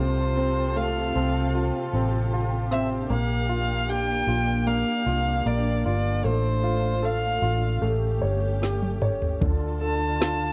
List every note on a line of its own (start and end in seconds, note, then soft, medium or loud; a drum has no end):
0.00 1.11 C2 medium
0.00 3.06 C3 medium
0.00 3.06 C4 medium
0.00 3.06 F4 medium
0.00 6.20 G4 medium
0.00 3.06 A4 medium
0.00 0.78 C5 medium
0.37 1.14 C4 medium
0.76 2.28 A3 soft
0.76 1.54 F5 medium
1.15 1.70 C2 medium
1.15 1.93 C4 soft
1.55 2.32 F4 soft
1.93 3.06 A1 medium
1.93 2.70 C4 soft
2.33 3.08 F4 soft
2.71 3.09 C4 medium
2.71 2.89 E5 medium
3.10 4.23 A#1 medium
3.10 4.65 A#3 medium
3.10 6.21 A#3 medium
3.10 7.78 D4 medium
3.10 3.91 F5 medium
3.49 4.27 F4 medium
3.89 5.42 G4 soft
3.89 4.69 G5 loud
4.27 4.82 A#1 medium
4.27 5.05 F4 soft
4.67 5.45 A#3 medium
4.67 5.48 F5 medium
5.06 5.43 C2 medium
5.06 5.84 F4 soft
5.46 5.82 A#1 medium
5.46 6.22 A#3 soft
5.46 5.86 D5 medium
5.85 6.22 G1 medium
5.85 6.23 F4 soft
5.85 6.27 D5 medium
6.24 7.38 A1 medium
6.24 7.78 A3 soft
6.24 7.81 A3 medium
6.24 7.80 F4 medium
6.24 7.06 C5 medium
6.64 7.41 F4 soft
7.03 7.79 A4 soft
7.03 7.83 F5 medium
7.42 7.79 A1 medium
7.42 7.81 F4 soft
7.82 8.19 A1 medium
7.82 9.37 A3 medium
7.82 9.40 A3 medium
7.82 9.40 C#4 medium
7.82 9.40 G4 medium
8.22 9.37 G1 medium
8.22 9.00 C#5 soft
8.62 9.39 G4 soft
8.62 snare soft
8.82 high tom soft
9.02 9.40 C#5 soft
9.02 mid tom medium
9.22 floor tom medium
9.40 10.53 D2 medium
9.40 10.53 D3 medium
9.40 10.53 D4 soft
9.40 10.53 F4 medium
9.40 10.53 A4 medium
9.40 kick medium
9.40 floor tom medium
9.81 10.53 A4 soft
9.81 10.53 A5 medium
10.20 10.53 F4 soft
10.20 snare medium